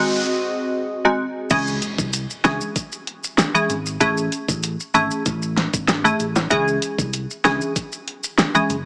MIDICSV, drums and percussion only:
0, 0, Header, 1, 2, 480
1, 0, Start_track
1, 0, Key_signature, 4, "minor"
1, 0, Tempo, 625000
1, 1159, Time_signature, 4, 2, 24, 8
1, 6798, End_track
2, 0, Start_track
2, 0, Title_t, "Drums"
2, 1154, Note_on_c, 9, 82, 71
2, 1158, Note_on_c, 9, 36, 127
2, 1158, Note_on_c, 9, 42, 76
2, 1158, Note_on_c, 9, 49, 102
2, 1231, Note_off_c, 9, 82, 0
2, 1235, Note_off_c, 9, 36, 0
2, 1235, Note_off_c, 9, 42, 0
2, 1235, Note_off_c, 9, 49, 0
2, 1285, Note_on_c, 9, 82, 54
2, 1362, Note_off_c, 9, 82, 0
2, 1398, Note_on_c, 9, 42, 66
2, 1399, Note_on_c, 9, 82, 48
2, 1474, Note_off_c, 9, 42, 0
2, 1476, Note_off_c, 9, 82, 0
2, 1524, Note_on_c, 9, 36, 92
2, 1528, Note_on_c, 9, 82, 81
2, 1601, Note_off_c, 9, 36, 0
2, 1605, Note_off_c, 9, 82, 0
2, 1637, Note_on_c, 9, 82, 80
2, 1639, Note_on_c, 9, 42, 79
2, 1713, Note_off_c, 9, 82, 0
2, 1716, Note_off_c, 9, 42, 0
2, 1769, Note_on_c, 9, 82, 52
2, 1846, Note_off_c, 9, 82, 0
2, 1877, Note_on_c, 9, 82, 54
2, 1879, Note_on_c, 9, 38, 122
2, 1881, Note_on_c, 9, 42, 46
2, 1885, Note_on_c, 9, 37, 103
2, 1954, Note_off_c, 9, 82, 0
2, 1956, Note_off_c, 9, 38, 0
2, 1958, Note_off_c, 9, 42, 0
2, 1962, Note_off_c, 9, 37, 0
2, 2005, Note_on_c, 9, 82, 70
2, 2082, Note_off_c, 9, 82, 0
2, 2118, Note_on_c, 9, 36, 95
2, 2118, Note_on_c, 9, 42, 76
2, 2122, Note_on_c, 9, 82, 78
2, 2195, Note_off_c, 9, 36, 0
2, 2195, Note_off_c, 9, 42, 0
2, 2198, Note_off_c, 9, 82, 0
2, 2244, Note_on_c, 9, 82, 60
2, 2321, Note_off_c, 9, 82, 0
2, 2360, Note_on_c, 9, 42, 59
2, 2437, Note_off_c, 9, 42, 0
2, 2488, Note_on_c, 9, 82, 93
2, 2565, Note_off_c, 9, 82, 0
2, 2596, Note_on_c, 9, 38, 118
2, 2600, Note_on_c, 9, 42, 72
2, 2601, Note_on_c, 9, 82, 70
2, 2602, Note_on_c, 9, 37, 91
2, 2673, Note_off_c, 9, 38, 0
2, 2676, Note_off_c, 9, 42, 0
2, 2678, Note_off_c, 9, 82, 0
2, 2679, Note_off_c, 9, 37, 0
2, 2728, Note_on_c, 9, 82, 52
2, 2805, Note_off_c, 9, 82, 0
2, 2840, Note_on_c, 9, 42, 57
2, 2840, Note_on_c, 9, 82, 50
2, 2916, Note_off_c, 9, 42, 0
2, 2917, Note_off_c, 9, 82, 0
2, 2967, Note_on_c, 9, 82, 74
2, 3043, Note_off_c, 9, 82, 0
2, 3078, Note_on_c, 9, 82, 68
2, 3079, Note_on_c, 9, 36, 127
2, 3079, Note_on_c, 9, 42, 74
2, 3154, Note_off_c, 9, 82, 0
2, 3155, Note_off_c, 9, 36, 0
2, 3156, Note_off_c, 9, 42, 0
2, 3207, Note_on_c, 9, 82, 57
2, 3284, Note_off_c, 9, 82, 0
2, 3319, Note_on_c, 9, 42, 66
2, 3322, Note_on_c, 9, 82, 49
2, 3395, Note_off_c, 9, 42, 0
2, 3398, Note_off_c, 9, 82, 0
2, 3444, Note_on_c, 9, 36, 94
2, 3448, Note_on_c, 9, 82, 76
2, 3521, Note_off_c, 9, 36, 0
2, 3525, Note_off_c, 9, 82, 0
2, 3556, Note_on_c, 9, 82, 80
2, 3560, Note_on_c, 9, 42, 82
2, 3633, Note_off_c, 9, 82, 0
2, 3637, Note_off_c, 9, 42, 0
2, 3687, Note_on_c, 9, 82, 52
2, 3764, Note_off_c, 9, 82, 0
2, 3796, Note_on_c, 9, 82, 55
2, 3801, Note_on_c, 9, 42, 47
2, 3873, Note_off_c, 9, 82, 0
2, 3878, Note_off_c, 9, 42, 0
2, 3924, Note_on_c, 9, 82, 66
2, 4001, Note_off_c, 9, 82, 0
2, 4038, Note_on_c, 9, 82, 81
2, 4039, Note_on_c, 9, 36, 92
2, 4039, Note_on_c, 9, 42, 73
2, 4115, Note_off_c, 9, 82, 0
2, 4116, Note_off_c, 9, 36, 0
2, 4116, Note_off_c, 9, 42, 0
2, 4164, Note_on_c, 9, 82, 58
2, 4241, Note_off_c, 9, 82, 0
2, 4280, Note_on_c, 9, 38, 81
2, 4282, Note_on_c, 9, 42, 58
2, 4357, Note_off_c, 9, 38, 0
2, 4358, Note_off_c, 9, 42, 0
2, 4405, Note_on_c, 9, 36, 98
2, 4407, Note_on_c, 9, 82, 92
2, 4481, Note_off_c, 9, 36, 0
2, 4484, Note_off_c, 9, 82, 0
2, 4517, Note_on_c, 9, 38, 122
2, 4519, Note_on_c, 9, 82, 72
2, 4521, Note_on_c, 9, 42, 73
2, 4523, Note_on_c, 9, 37, 93
2, 4594, Note_off_c, 9, 38, 0
2, 4596, Note_off_c, 9, 82, 0
2, 4598, Note_off_c, 9, 42, 0
2, 4600, Note_off_c, 9, 37, 0
2, 4648, Note_on_c, 9, 82, 52
2, 4725, Note_off_c, 9, 82, 0
2, 4760, Note_on_c, 9, 82, 50
2, 4761, Note_on_c, 9, 42, 56
2, 4836, Note_off_c, 9, 82, 0
2, 4837, Note_off_c, 9, 42, 0
2, 4884, Note_on_c, 9, 65, 72
2, 4884, Note_on_c, 9, 82, 72
2, 4888, Note_on_c, 9, 38, 72
2, 4961, Note_off_c, 9, 65, 0
2, 4961, Note_off_c, 9, 82, 0
2, 4964, Note_off_c, 9, 38, 0
2, 4996, Note_on_c, 9, 82, 71
2, 4999, Note_on_c, 9, 36, 123
2, 4999, Note_on_c, 9, 42, 76
2, 5073, Note_off_c, 9, 82, 0
2, 5076, Note_off_c, 9, 36, 0
2, 5076, Note_off_c, 9, 42, 0
2, 5128, Note_on_c, 9, 82, 57
2, 5205, Note_off_c, 9, 82, 0
2, 5239, Note_on_c, 9, 42, 69
2, 5243, Note_on_c, 9, 82, 51
2, 5316, Note_off_c, 9, 42, 0
2, 5319, Note_off_c, 9, 82, 0
2, 5364, Note_on_c, 9, 36, 91
2, 5370, Note_on_c, 9, 82, 81
2, 5441, Note_off_c, 9, 36, 0
2, 5446, Note_off_c, 9, 82, 0
2, 5479, Note_on_c, 9, 82, 78
2, 5480, Note_on_c, 9, 42, 79
2, 5555, Note_off_c, 9, 82, 0
2, 5556, Note_off_c, 9, 42, 0
2, 5611, Note_on_c, 9, 82, 53
2, 5688, Note_off_c, 9, 82, 0
2, 5719, Note_on_c, 9, 82, 54
2, 5720, Note_on_c, 9, 38, 122
2, 5722, Note_on_c, 9, 42, 48
2, 5726, Note_on_c, 9, 37, 98
2, 5796, Note_off_c, 9, 82, 0
2, 5797, Note_off_c, 9, 38, 0
2, 5799, Note_off_c, 9, 42, 0
2, 5803, Note_off_c, 9, 37, 0
2, 5847, Note_on_c, 9, 82, 67
2, 5924, Note_off_c, 9, 82, 0
2, 5959, Note_on_c, 9, 36, 91
2, 5961, Note_on_c, 9, 42, 75
2, 5961, Note_on_c, 9, 82, 79
2, 6036, Note_off_c, 9, 36, 0
2, 6038, Note_off_c, 9, 42, 0
2, 6038, Note_off_c, 9, 82, 0
2, 6085, Note_on_c, 9, 82, 57
2, 6162, Note_off_c, 9, 82, 0
2, 6202, Note_on_c, 9, 42, 58
2, 6279, Note_off_c, 9, 42, 0
2, 6326, Note_on_c, 9, 82, 93
2, 6403, Note_off_c, 9, 82, 0
2, 6438, Note_on_c, 9, 38, 117
2, 6441, Note_on_c, 9, 82, 71
2, 6442, Note_on_c, 9, 42, 70
2, 6444, Note_on_c, 9, 37, 94
2, 6515, Note_off_c, 9, 38, 0
2, 6518, Note_off_c, 9, 82, 0
2, 6519, Note_off_c, 9, 42, 0
2, 6521, Note_off_c, 9, 37, 0
2, 6567, Note_on_c, 9, 82, 50
2, 6644, Note_off_c, 9, 82, 0
2, 6678, Note_on_c, 9, 82, 50
2, 6681, Note_on_c, 9, 42, 57
2, 6755, Note_off_c, 9, 82, 0
2, 6758, Note_off_c, 9, 42, 0
2, 6798, End_track
0, 0, End_of_file